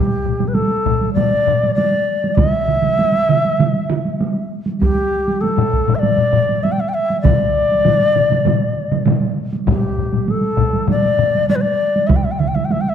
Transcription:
Already playing: shakuhachi G4
0.25 taiko low-mid
0.40 taiko low-mid, taiko high
0.48 shakuhachi B4
0.54 shakuhachi A4, taiko high
0.86 taiko, taiko low-mid
1.01 taiko high
1.14 shakuhachi D5, taiko low-mid, taiko high
1.47 taiko low-mid
1.63 taiko high
1.74 shakuhachi D5, taiko high
2.24 taiko high
2.35 shakuhachi E5, taiko, taiko mid, taiko high
2.68 taiko mid
2.82 taiko mid, taiko high
2.99 taiko high
3.29 taiko mid
3.45 taiko high
3.59 taiko mid, taiko high
3.90 taiko mid
4.05 taiko high
4.21 taiko high
4.66 taiko high
4.81 shakuhachi G4, taiko, taiko high
5.28 taiko high
5.41 shakuhachi A4, taiko high
5.58 taiko low-mid
5.73 taiko
5.88 taiko low-mid, taiko high
5.95 shakuhachi D5 E5
6.03 taiko low-mid, taiko high
6.18 taiko low-mid
6.33 taiko low-mid
6.49 taiko high
6.63 shakuhachi E5, taiko high
6.72 shakuhachi G5
6.80 shakuhachi E5
6.89 shakuhachi G5
6.94 shakuhachi E5
7.10 taiko high
7.21 shakuhachi D5, taiko, taiko low-mid, taiko mid
7.26 taiko high
7.72 taiko high
7.85 taiko low-mid, taiko mid, taiko high
8.15 taiko low-mid, taiko mid
8.30 taiko low-mid, taiko mid, taiko high
8.45 taiko low-mid, taiko mid, taiko high
8.91 taiko low-mid, taiko mid, taiko high
9.06 taiko low-mid, taiko mid, taiko high
9.23 taiko high
9.53 taiko high
9.67 shakuhachi G4, taiko, taiko low-mid, taiko high
9.98 taiko low-mid
10.13 taiko low-mid, taiko high
10.28 shakuhachi A4, taiko high
10.57 taiko, taiko low-mid
10.73 taiko high
10.88 shakuhachi D5, taiko low-mid, taiko high
11.19 taiko low-mid
11.35 taiko high
11.49 shakuhachi D5, taiko high
11.55 shakuhachi B4
11.61 shakuhachi D5
11.96 taiko high
12.07 shakuhachi E5, taiko, taiko mid
12.11 taiko high
12.16 shakuhachi G5
12.24 shakuhachi E5
12.31 shakuhachi G5
12.39 shakuhachi E5, taiko mid
12.48 shakuhachi G5
12.55 shakuhachi E5, taiko mid, taiko high
12.65 shakuhachi G5
12.71 shakuhachi E5, taiko high
12.81 shakuhachi G5
12.89 shakuhachi E5

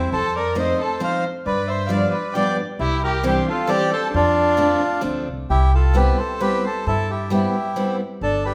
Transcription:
Already playing: bandoneon E4
0.12 upright bass F2, bandoneon A4 C5, violin A4
0.36 bandoneon A#4 D5, violin A#4
0.55 steel-string acoustic guitar F3 A3 C4 D#4, bandoneon C5, violin C5
0.59 bandoneon D#5
0.81 bandoneon A4 C5, violin A4
1.00 steel-string acoustic guitar F3 A3 C4 D#4, violin C5, bandoneon C5 F5
1.46 upright bass G2, violin B4, bandoneon B4 D5
1.68 violin C5, bandoneon C5 E5
1.86 steel-string acoustic guitar F3 G3 B3 D4, violin D5, bandoneon D5 F5
2.10 violin B4, bandoneon B4 D5
2.34 steel-string acoustic guitar F3 G3 B3 D4, violin D5, bandoneon D5 G5
2.79 upright bass C2, bandoneon E4 G4, violin E4
3.04 bandoneon G4 A#4, violin G4
3.24 steel-string acoustic guitar E3 G3 C4 D4, violin G4, bandoneon G4 C5
3.48 violin F4, bandoneon F4 A4
3.67 steel-string acoustic guitar E3 G3 C4 D4, bandoneon G4 D5, violin G4
3.92 violin A4, bandoneon A4 C5
4.12 upright bass F2, violin D4, bandoneon D4 F4
4.57 steel-string acoustic guitar F3 A3 C4 D4
5.01 upright bass D2, steel-string acoustic guitar F3 A3 C4 D4
5.28 upright bass C2
5.50 upright bass C2, bandoneon E4 G4
5.75 bandoneon F4 A4
5.94 steel-string acoustic guitar G3 B3 C4 E4, bandoneon G4 B4
6.18 bandoneon A4 C5
6.41 steel-string acoustic guitar G3 B3 C4 E4, bandoneon G4 B4
6.64 bandoneon A4 C5
6.87 upright bass G2, bandoneon E4 A4
7.10 bandoneon E4 G4
7.30 steel-string acoustic guitar G3 B3 C4 E4, bandoneon E4 G4
7.76 steel-string acoustic guitar G3 B3 C4 E4
8.21 upright bass G1, bandoneon D4 A4
8.45 bandoneon G4 B4

